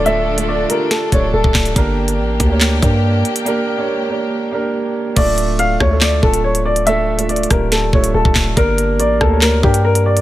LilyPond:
<<
  \new Staff \with { instrumentName = "Upright piano" } { \time 4/4 \key d \minor \tempo 4 = 141 e''4 d''8 bes'8 a'8 cis''8 a'4 | r1 | r1 | d''4 f''8 cis''8 d''8 a'8 cis''8 d''8 |
e''4 d''8 bes'8 a'8 cis''8 a'4 | bes'4 d''8 a'8 bes'8 g'8 bes'8 d''8 | }
  \new Staff \with { instrumentName = "Grand piano" } { \time 4/4 \key d \minor <a d' f' a'>8 r16 <a d' f' a'>8 r16 <a d' f' g'>8. r16 <a d' f' a'>4~ <a d' f' a'>16 r16 | <bes d' g' bes'>4~ <bes d' g' bes'>16 r8 <bes d' g' cis''>8 r16 <bes d' g' bes'>4~ <bes d' g' bes'>16 r16 | <bes d' g' bes'>8 r16 <bes d' g' cis''>8 r16 <bes d' g' bes'>8. r16 <bes d' g' bes'>4~ <bes d' g' bes'>16 r16 | <a d' f' a'>4~ <a d' f' a'>16 r8 <a d' f' a'>8 r16 <a d' f' a'>4~ <a d' f' a'>16 r16 |
<a d' f' a'>8 r16 <a d' f' a'>8 r16 <a d' f' g'>8. r16 <a d' f' a'>4~ <a d' f' a'>16 r16 | <bes d' g' bes'>4~ <bes d' g' bes'>16 r8 <bes d' g' cis''>8 r16 <bes d' g' bes'>4~ <bes d' g' bes'>16 r16 | }
  \new Staff \with { instrumentName = "String section" } { \time 4/4 \key d \minor <d d' f' a'>1 | <bes g'>1~ | <bes g'>1 | r1 |
r1 | r1 | }
  \new Staff \with { instrumentName = "808-style bass" } { \clef bass \time 4/4 \key d \minor d,,4. r4 d,,8 d,,16 d,,16 d,,8 | g,,4 a,,8 d,4 g,4 r8 | r1 | d,,4. d,4 d,,4.~ |
d,,4. d,,4 d,,8 d,,16 d,,16 d,,8 | g,,4 a,,8 d,4 g,4. | }
  \new DrumStaff \with { instrumentName = "Drums" } \drummode { \time 4/4 hh8. hh16 r8 hh8 <hh sn>8 <hh bd>8 r16 bd16 <hc hh bd sn>16 hh16 | <hh bd>8. hh16 r8 <hh bd>8 <hc hh sn>8 <hh bd>8 r8 hh16 hh16 | hh4 r4 r4 r4 | <cymc hh bd>8 hh8 hh8 <bd ss>8 <hc hh sn>8 bd16 hh16 r16 hh8 hh16 |
hh8. hh16 \tuplet 3/2 { hh16 hh16 hh16 <hh bd ss>16 r16 r16 } <hh sn>8 bd16 hh16 r16 bd16 <hc hh bd sn>8 | <hh bd>8 hh8 hh8 <bd ss>8 <hc hh sn>8 bd16 hh16 r16 hh8 hh16 | }
>>